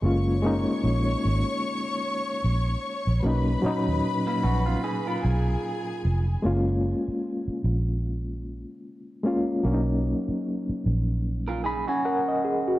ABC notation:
X:1
M:4/4
L:1/16
Q:"Swing 16ths" 1/4=75
K:F#
V:1 name="String section"
[cc']16 | [Bb]8- [Bb]2 [Gg]6 | z16 | z16 |]
V:2 name="Clean electric guitar"
z16 | z4 z [A,D] [CF] [B,E] [DG] [EA]6 z | z16 | z8 z [EA] [DG] [CF]4- [CF] |]
V:3 name="Reed electric piano"
[G,A,CE]2 [G,A,CD]6 z8 | [F,A,CD]2 [A,,F,CD]6 z8 | [G,A,CE]6 z8 [G,A,CE]2 | [F,A,C=D^D]6 z4 b g [Af] d G F |]
V:4 name="Fingered electric bass" clef=bass
F,,,4 A,,,2 G,,, z4 z A,,,2 z A,,, | B,,,2 z D,, z2 A,,,2 z2 B,,,2 z2 E,,,2 | F,,,3 z3 A,,,4- A,,, z4 z | B,,,3 z3 A,,,4- A,,, z4 z |]